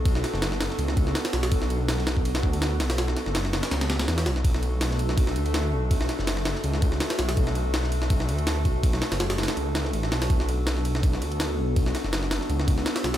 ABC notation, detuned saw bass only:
X:1
M:4/4
L:1/16
Q:"Swing 16ths" 1/4=164
K:Bm
V:1 name="Detuned saw bass" clef=bass
B,,,2 z F,,,4 z C,,4 z2 B,,,2 | B,,,8- B,,,2 D,,4 B,,,2- | B,,,2 z F,,,4 z C,,4 E,,2 B,,,2 | B,,,8- B,,,2 D,,4 B,,,2- |
B,,,2 z F,,,4 z C,,4 z2 B,,,2 | B,,,8- B,,,2 D,,4 B,,,2- | B,,,2 z F,,,4 z C,,4 A,,,2 B,,,2 | B,,,8- B,,,2 D,,4 B,,,2- |
B,,,2 z F,,,4 z C,,4 z2 B,,,2 |]